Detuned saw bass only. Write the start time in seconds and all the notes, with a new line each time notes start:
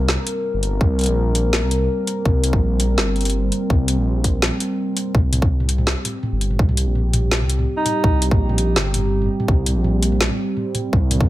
Already playing: C2
0.54 G1
0.81 C2
1.08 A#1
1.63 C2
2.25 C2
2.53 A#1
2.98 G1
3.70 C2
3.98 A#1
5.15 C2
6.33 G1
6.59 C2
6.87 A#1
7.41 C2
8.04 C2
8.31 A#1
8.76 G1
9.48 C2
9.76 A#1
10.93 C2